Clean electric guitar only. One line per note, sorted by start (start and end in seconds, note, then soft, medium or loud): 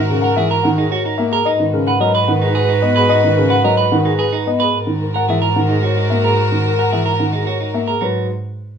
0.24 0.37 A#4 medium
0.38 0.50 G#4 medium
0.51 0.69 A#4 medium
0.78 0.91 D#4 medium
0.92 1.05 F#4 loud
1.05 1.23 D#4 medium
1.33 1.51 A#4 medium
1.46 1.64 D#4 medium
1.88 2.00 B4 medium
2.01 2.14 A#4 medium
2.15 2.32 B4 medium
2.42 2.60 D#4 medium
2.55 2.73 G#4 medium
2.69 2.87 D#4 medium
2.96 3.14 B4 medium
3.10 3.28 D#4 medium
3.50 3.64 B4 medium
3.64 3.77 A#4 medium
3.77 3.96 B4 medium
4.05 4.23 D#4 medium
4.19 4.37 G#4 medium
4.33 4.51 D#4 medium
4.60 4.78 B4 medium
5.14 5.28 A#4 medium
5.29 5.41 G#4 medium
5.42 5.60 A#4 medium
5.69 5.83 D#4 medium
5.83 5.97 F#4 medium
5.97 6.14 D#4 medium
6.24 6.42 A#4 medium
6.79 6.92 A#4 soft
6.92 7.05 G#4 soft
7.06 7.23 A#4 medium
7.33 7.47 D#4 soft
7.47 7.60 F#4 medium
7.61 7.78 D#4 soft
7.87 8.05 A#4 medium
8.01 8.26 F#4 medium